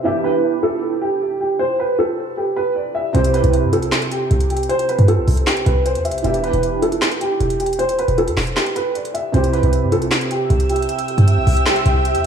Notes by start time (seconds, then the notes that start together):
0.03 E3 B3 D4 G4 E5
0.24 B4
0.63 A4
1.01 G4
1.40 G4
1.59 C5
1.80 B4
1.99 A4
2.37 G4
2.56 B4
2.76 D5
2.95 E5
3.13 C2 C3 C4 E4 G4 C5, closed hi-hat
3.24 closed hi-hat
3.34 B4, closed hi-hat
3.44 C2, closed hi-hat
3.53 closed hi-hat
3.63 G2
3.73 A4, closed hi-hat
3.78 C2
3.82 closed hi-hat
3.92 snare, clap, closed hi-hat
4.02 closed hi-hat
4.11 G4, closed hi-hat
4.31 C2, closed hi-hat
4.40 closed hi-hat
4.50 G4, closed hi-hat
4.57 closed hi-hat
4.63 closed hi-hat
4.69 C5, closed hi-hat
4.79 closed hi-hat
4.89 B4, closed hi-hat
4.99 G2, closed hi-hat
5.08 A4, closed hi-hat
5.18 B1
5.28 C2, open hi-hat
5.37 closed hi-hat
5.47 G4, snare, clap, closed hi-hat
5.57 closed hi-hat
5.66 C2 B4, closed hi-hat
5.86 C5, closed hi-hat
5.95 E2, closed hi-hat
6.05 E5, closed hi-hat
6.10 C2, closed hi-hat
6.18 closed hi-hat
6.22 E1 E3 B3 D4 G4 E5, closed hi-hat
6.34 closed hi-hat
6.44 B4, closed hi-hat
6.53 E1, closed hi-hat
6.63 closed hi-hat
6.82 A4, closed hi-hat
6.92 closed hi-hat
7.02 snare, clap, closed hi-hat
7.11 closed hi-hat
7.21 G4, closed hi-hat
7.40 E1, closed hi-hat
7.50 closed hi-hat
7.60 G4, closed hi-hat
7.66 closed hi-hat
7.73 closed hi-hat
7.79 C5, closed hi-hat
7.89 closed hi-hat
7.99 B4, closed hi-hat
8.08 E1, closed hi-hat
8.18 A4, closed hi-hat
8.28 E2, closed hi-hat
8.37 E1, snare, clap, open hi-hat
8.47 closed hi-hat
8.57 G4, snare, clap, closed hi-hat
8.66 closed hi-hat
8.76 B4, closed hi-hat
8.95 D5, closed hi-hat
9.05 closed hi-hat
9.14 E5, closed hi-hat
9.32 C2 C3 C4 E4 G4 C5 E5 G5 E6, closed hi-hat
9.44 closed hi-hat
9.53 B4, closed hi-hat
9.63 C2, closed hi-hat
9.73 closed hi-hat
9.82 G2
9.92 A4, closed hi-hat
9.97 C2
10.02 closed hi-hat
10.11 snare, clap, closed hi-hat
10.21 closed hi-hat
10.31 G4, closed hi-hat
10.50 C2, closed hi-hat
10.60 closed hi-hat
10.69 G4, closed hi-hat
10.76 closed hi-hat
10.82 closed hi-hat
10.89 closed hi-hat
10.99 closed hi-hat
11.08 closed hi-hat
11.18 G2, closed hi-hat
11.28 closed hi-hat
11.37 B1
11.47 C2, open hi-hat
11.57 closed hi-hat
11.66 snare, clap, closed hi-hat
11.76 closed hi-hat
11.86 C2, closed hi-hat
12.05 closed hi-hat
12.15 E2, closed hi-hat